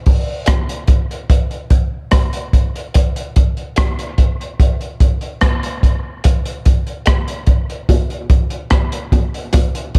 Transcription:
0.06 kick medium
0.06 open hi-hat soft
0.46 kick loud
0.46 cross-stick loud
0.46 closed hi-hat loud
0.69 closed hi-hat medium
0.87 kick medium
0.87 closed hi-hat medium
1.11 closed hi-hat soft
1.30 kick loud
1.30 closed hi-hat medium
1.51 closed hi-hat soft
1.70 kick medium
1.70 closed hi-hat medium
2.11 kick loud
2.11 cross-stick medium
2.11 closed hi-hat medium
2.33 closed hi-hat soft
2.53 kick medium
2.53 closed hi-hat medium
2.76 closed hi-hat soft
2.94 kick loud
2.94 closed hi-hat loud
3.16 closed hi-hat soft
3.36 kick medium
3.36 closed hi-hat medium
3.57 closed hi-hat soft
3.76 kick loud
3.76 cross-stick loud
3.76 closed hi-hat medium
3.99 closed hi-hat medium
4.18 kick medium
4.18 closed hi-hat medium
4.41 closed hi-hat soft
4.60 kick medium
4.60 closed hi-hat medium
4.81 closed hi-hat soft
5.00 kick medium
5.00 closed hi-hat medium
5.21 closed hi-hat soft
5.41 kick loud
5.41 cross-stick loud
5.41 closed hi-hat medium
5.63 closed hi-hat medium
5.83 kick medium
5.83 closed hi-hat medium
6.24 kick loud
6.24 closed hi-hat loud
6.46 closed hi-hat medium
6.65 kick medium
6.65 closed hi-hat medium
6.87 closed hi-hat soft
7.06 kick medium
7.06 cross-stick loud
7.06 closed hi-hat medium
7.28 closed hi-hat medium
7.47 kick medium
7.47 closed hi-hat medium
7.70 closed hi-hat soft
7.89 kick loud
7.89 closed hi-hat medium
7.89 high bongo medium
8.10 closed hi-hat soft
8.30 kick medium
8.30 closed hi-hat medium
8.50 closed hi-hat soft
8.70 kick loud
8.70 cross-stick loud
8.70 closed hi-hat medium
8.92 closed hi-hat medium
9.12 kick medium
9.12 closed hi-hat medium
9.12 high bongo medium
9.12 low bongo medium
9.34 closed hi-hat soft
9.53 kick loud
9.53 closed hi-hat loud
9.53 high bongo medium
9.75 closed hi-hat medium
9.95 kick medium
9.95 closed hi-hat medium

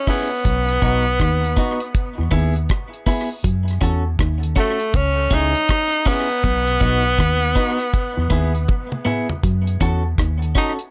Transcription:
0.07 2.29 B3 loud
0.07 0.29 C#4 medium
0.07 0.29 E4 medium
0.07 0.29 G#4 medium
0.07 kick medium
0.07 open hi-hat medium
0.31 muted clean electric guitar stroke soft
0.45 0.80 B1 loud
0.45 0.68 B2 medium
0.45 kick loud
0.45 closed hi-hat medium
0.69 closed hi-hat medium
0.82 1.17 B1 medium
0.82 1.05 B2 medium
0.82 1.04 B3 medium
0.82 1.04 D#4 medium
0.82 1.05 F#4 medium
0.82 kick medium
0.82 closed hi-hat medium
1.20 1.55 D#2 medium
1.20 1.42 D#3 medium
1.20 kick loud
1.20 cross-stick loud
1.20 closed hi-hat medium
1.44 closed hi-hat medium
1.57 1.78 B3 medium
1.57 1.79 D#4 medium
1.57 1.79 F#4 medium
1.57 kick medium
1.57 closed hi-hat medium
1.80 closed hi-hat medium
1.95 kick loud
1.95 closed hi-hat medium
2.18 2.31 E2 medium
2.18 2.26 E3 medium
2.31 2.67 D#2 medium
2.31 2.55 D#3 medium
2.31 2.53 B3 medium
2.31 2.54 E4 medium
2.31 2.54 G#4 loud
2.31 kick medium
2.31 open hi-hat soft
2.56 closed hi-hat soft
2.69 kick loud
2.69 cross-stick loud
2.69 closed hi-hat medium
2.93 closed hi-hat soft
3.06 3.28 B3 medium
3.06 3.28 E4 medium
3.06 3.29 G#4 medium
3.06 kick medium
3.06 open hi-hat medium
3.44 3.79 F#2 loud
3.44 3.67 F#3 medium
3.44 kick loud
3.44 closed hi-hat loud
3.68 closed hi-hat medium
3.81 4.17 E2 medium
3.81 4.04 E3 medium
3.81 4.03 C#4 medium
3.81 4.03 F#4 medium
3.81 4.04 A4 medium
3.81 kick medium
3.81 closed hi-hat medium
4.19 4.54 D#2 medium
4.19 4.42 D#3 medium
4.19 kick loud
4.19 cross-stick loud
4.19 closed hi-hat medium
4.43 closed hi-hat medium
4.56 4.97 A3 medium
4.56 4.78 C#4 medium
4.56 4.78 F#4 medium
4.56 4.79 A4 medium
4.56 kick medium
4.56 closed hi-hat medium
4.80 closed hi-hat medium
4.94 5.29 C#2 medium
4.94 5.16 C#3 medium
4.94 5.35 C#4 loud
4.94 kick loud
4.94 closed hi-hat medium
5.30 5.53 C#2 medium
5.30 5.46 C#3 medium
5.30 5.52 C#4 medium
5.30 6.09 D#4 loud
5.30 5.53 E4 medium
5.30 5.53 G#4 medium
5.30 kick medium
5.30 closed hi-hat medium
5.55 closed hi-hat soft
5.69 kick loud
5.69 cross-stick loud
5.69 closed hi-hat medium
5.93 closed hi-hat soft
6.06 9.06 B3 loud
6.06 6.27 C#4 medium
6.06 6.28 E4 medium
6.06 6.28 G#4 medium
6.06 kick medium
6.06 open hi-hat medium
6.30 muted clean electric guitar stroke soft
6.44 6.79 B1 loud
6.44 6.66 B2 medium
6.44 kick loud
6.44 closed hi-hat medium
6.67 closed hi-hat soft
6.81 7.16 B1 medium
6.81 7.04 B2 medium
6.81 7.02 B3 medium
6.81 7.03 D#4 medium
6.81 7.03 F#4 medium
6.81 kick loud
6.81 closed hi-hat medium
7.19 7.54 D#2 medium
7.19 7.41 D#3 medium
7.19 kick loud
7.19 cross-stick medium
7.19 closed hi-hat medium
7.43 closed hi-hat medium
7.55 7.77 B3 medium
7.55 7.77 D#4 medium
7.55 7.78 F#4 medium
7.55 kick medium
7.55 closed hi-hat medium
7.79 closed hi-hat medium
7.94 kick loud
7.94 closed hi-hat medium
8.17 8.30 E2 medium
8.17 8.25 E3 medium
8.30 8.66 D#2 medium
8.30 8.54 D#3 medium
8.30 8.52 B3 medium
8.30 8.53 E4 medium
8.30 8.53 G#4 medium
8.30 kick medium
8.30 closed hi-hat medium
8.55 closed hi-hat soft
8.68 kick loud
8.68 high tom medium
8.92 mid tom medium
9.05 9.27 B3 medium
9.05 9.27 E4 medium
9.05 9.28 G#4 medium
9.05 mid tom medium
9.30 floor tom medium
9.43 9.78 F#2 loud
9.43 9.66 F#3 medium
9.43 kick loud
9.43 closed hi-hat medium
9.67 closed hi-hat medium
9.81 10.15 E2 medium
9.81 10.03 E3 medium
9.81 10.02 C#4 medium
9.81 10.03 F#4 medium
9.81 10.03 A4 medium
9.81 kick medium
9.81 closed hi-hat medium
10.18 10.53 D#2 medium
10.18 10.41 D#3 medium
10.18 kick loud
10.18 cross-stick loud
10.18 closed hi-hat medium
10.42 closed hi-hat medium
10.55 10.77 C#4 medium
10.55 10.73 D#4 medium
10.55 10.77 F#4 medium
10.55 10.78 A4 medium
10.55 kick medium
10.55 closed hi-hat medium
10.79 closed hi-hat soft

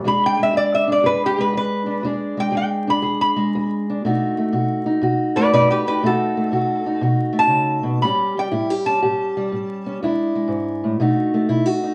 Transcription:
0.04 0.51 E2 medium
0.04 0.39 G#3 medium
0.04 0.87 D4 medium
0.04 0.53 G#4 medium
0.04 0.23 B5 medium
0.26 0.40 G5 medium
0.39 1.37 G#3 soft
0.39 0.57 E5 medium
0.53 1.00 E2 medium
0.53 1.03 G#4 medium
0.57 0.72 D5 medium
0.75 0.89 E5 medium
0.88 1.85 D4 medium
0.92 1.06 D5 medium
1.03 1.50 E2 medium
1.03 2.02 G#4 medium
1.03 1.22 B4 medium
1.26 1.40 G4 medium
1.38 2.02 G#3 medium
1.38 1.55 B4 medium
1.53 2.01 E2 medium
1.53 2.04 B4 medium
1.86 2.01 D4 medium
2.03 2.50 E2 medium
2.03 2.36 G#3 medium
2.03 2.86 D4 medium
2.03 2.50 G#4 medium
2.37 3.35 G#3 soft
2.37 2.55 G5 medium
2.52 2.99 E2 medium
2.52 3.01 G#4 medium
2.57 2.88 G5 medium
2.87 3.87 D4 medium
2.87 3.20 B5 medium
3.02 3.50 E2 medium
3.02 4.01 G#4 medium
3.21 3.69 B5 medium
3.36 4.01 G#3 medium
3.55 4.01 E2 medium
3.90 4.03 D4 medium
4.05 4.51 B2 medium
4.05 4.37 A3 medium
4.05 4.86 D#4 medium
4.05 4.53 F#4 medium
4.38 5.37 A3 soft
4.52 4.99 B2 medium
4.52 5.02 F#4 medium
4.86 5.86 D#4 medium
5.02 5.49 B2 medium
5.02 6.01 F#4 medium
5.36 6.03 A3 medium
5.36 5.53 B4 medium
5.36 5.53 D5 medium
5.53 6.00 B2 medium
5.53 5.69 B4 medium
5.53 5.70 D5 medium
5.71 5.87 G4 medium
5.71 5.86 B4 medium
5.87 6.01 D#4 medium
5.87 6.02 G4 medium
5.87 6.03 B4 medium
6.03 6.49 B2 medium
6.03 6.37 A3 medium
6.03 6.85 D#4 medium
6.03 6.52 F#4 medium
6.03 7.01 A4 medium
6.37 7.32 A3 soft
6.52 6.99 B2 medium
6.52 7.02 F#4 medium
6.86 8.00 D#4 medium
7.01 7.46 B2 medium
7.01 8.00 F#4 medium
7.33 7.98 A3 medium
7.39 8.01 A5 loud
7.47 7.83 C#3 medium
7.83 8.01 B2 medium
8.02 8.49 A2 medium
8.02 8.36 G3 medium
8.02 8.86 C#4 medium
8.02 8.51 G4 medium
8.02 8.35 B5 medium
8.38 9.36 G3 soft
8.38 8.86 G5 medium
8.52 8.99 A2 medium
8.52 8.70 E4 medium
8.70 9.01 G4 medium
8.86 9.85 C#4 medium
8.86 9.98 A5 medium
9.02 9.49 A2 medium
9.02 10.00 G4 medium
9.37 10.02 G3 medium
9.52 9.98 A2 medium
9.86 10.00 C#4 medium
10.02 10.47 E2 medium
10.02 10.34 G#3 medium
10.02 11.00 D4 medium
10.02 11.01 E4 medium
10.35 10.99 G#3 medium
10.48 10.83 G#2 medium
10.84 10.99 A2 medium
11.00 11.47 B2 medium
11.00 11.33 A3 medium
11.00 11.82 D#4 medium
11.00 11.48 F#4 medium
11.34 11.94 A3 medium
11.49 11.94 B2 medium
11.49 11.66 E4 medium
11.66 11.94 F#4 medium
11.83 11.94 D#4 medium

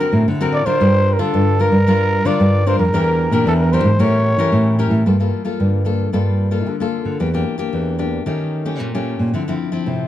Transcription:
0.00 0.25 D3 medium
0.00 0.26 C4 medium
0.00 0.26 F#4 medium
0.00 0.22 A#4 medium
0.00 0.26 A#4 medium
0.12 0.24 A2 medium
0.28 0.78 A2 medium
0.28 0.62 D3 loud
0.41 0.63 C4 medium
0.41 0.63 F#4 medium
0.41 0.63 A#4 medium
0.53 0.67 D5 medium
0.66 0.78 D3 medium
0.66 1.16 D4 medium
0.66 1.16 F4 medium
0.66 1.16 A#4 medium
0.66 1.15 C5 loud
0.81 1.15 G2 loud
0.81 1.31 G3 medium
1.13 1.22 A#4 medium
1.19 1.31 D3 medium
1.19 1.55 D4 medium
1.19 1.55 F4 medium
1.19 1.63 A4 medium
1.34 1.68 G2 medium
1.34 1.84 D3 medium
1.59 1.76 D4 soft
1.59 1.76 F4 soft
1.59 1.76 A#4 medium
1.59 2.28 A#4 loud
1.72 2.18 G2 medium
1.87 2.38 G3 medium
1.87 2.23 D4 medium
1.87 2.23 F4 medium
1.87 2.23 A#4 medium
2.25 2.37 D3 medium
2.25 2.62 D4 medium
2.25 2.62 F4 medium
2.25 2.62 A#4 medium
2.25 2.69 D5 loud
2.40 2.74 G2 medium
2.40 2.91 D3 medium
2.67 2.82 D4 medium
2.67 2.82 F4 medium
2.67 2.83 A#4 medium
2.67 2.79 C5 medium
2.78 2.90 F2 medium
2.78 3.42 A#4 medium
2.93 3.27 E2 loud
2.93 3.44 E3 medium
2.93 3.29 D4 medium
2.93 3.30 G4 medium
2.93 3.30 A#4 medium
3.31 3.44 A#2 medium
3.31 3.69 D4 medium
3.31 3.69 G4 medium
3.31 3.69 A#4 medium
3.46 3.80 E2 medium
3.46 3.97 E3 medium
3.46 3.53 A4 medium
3.61 3.75 A#4 medium
3.73 3.89 D4 medium
3.73 3.89 G4 medium
3.73 3.89 A#4 medium
3.73 4.02 C5 medium
3.84 3.97 G#2 medium
3.99 4.33 A2 medium
3.99 4.50 A3 medium
3.99 4.35 C#4 medium
3.99 4.36 G4 medium
3.99 4.36 A#4 medium
3.99 4.80 C#5 medium
4.38 4.50 E3 medium
4.38 4.75 C#4 medium
4.38 4.75 G4 medium
4.38 4.75 A#4 medium
4.52 4.87 A2 medium
4.52 5.04 E3 medium
4.79 5.02 C#4 medium
4.79 5.02 G4 medium
4.79 5.02 A#4 medium
4.90 5.03 A2 medium
5.06 5.29 G2 medium
5.06 5.57 G3 soft
5.06 5.15 A#3 soft
5.06 5.16 F4 soft
5.06 5.16 A4 soft
5.20 5.42 A#3 medium
5.20 5.43 F4 medium
5.20 5.43 A4 medium
5.45 5.81 A#3 medium
5.45 5.82 F4 medium
5.45 5.82 A4 medium
5.60 6.05 G2 medium
5.60 6.11 D3 medium
5.85 6.08 A#3 soft
5.85 6.08 F4 soft
5.85 6.09 A4 medium
6.13 6.67 G2 medium
6.13 6.64 G3 soft
6.13 6.49 A#3 soft
6.13 6.49 F4 medium
6.13 6.49 A4 medium
6.51 6.75 A#3 medium
6.51 6.75 F4 soft
6.51 6.75 A4 medium
6.67 7.17 D3 medium
6.67 7.01 D3 medium
6.80 7.18 A#3 medium
6.80 7.19 F4 medium
6.80 7.19 A4 medium
7.05 7.17 D3 medium
7.20 7.43 E2 medium
7.20 7.71 E3 soft
7.20 7.28 A#3 soft
7.20 7.28 D4 medium
7.20 7.28 G4 medium
7.34 7.56 A#3 soft
7.34 7.56 D4 medium
7.34 7.56 G4 medium
7.58 7.95 A#3 medium
7.58 7.95 D4 medium
7.58 7.95 G4 medium
7.73 8.19 E2 medium
7.73 8.24 E3 medium
7.99 8.22 A#3 soft
7.99 8.22 D4 medium
7.99 8.22 G4 medium
8.26 8.77 D#3 medium
8.26 8.80 D#3 medium
8.26 8.62 A3 medium
8.26 8.62 C#4 medium
8.26 8.63 G4 medium
8.65 8.89 A3 medium
8.65 8.89 C#4 medium
8.65 8.89 G4 medium
8.80 9.31 A#2 soft
8.80 9.14 A#2 medium
8.95 9.32 A3 medium
8.95 9.32 C#4 medium
8.95 9.32 G4 medium
9.19 9.31 A#2 medium
9.33 9.56 D3 medium
9.33 9.84 D3 soft
9.33 9.42 F3 soft
9.33 9.42 C4 soft
9.33 9.42 E4 medium
9.48 9.70 F3 medium
9.48 9.70 C4 medium
9.48 9.70 E4 medium
9.72 10.08 F3 medium
9.72 10.08 C4 medium
9.72 10.08 E4 medium
9.86 10.08 A2 medium
9.86 10.08 C3 medium

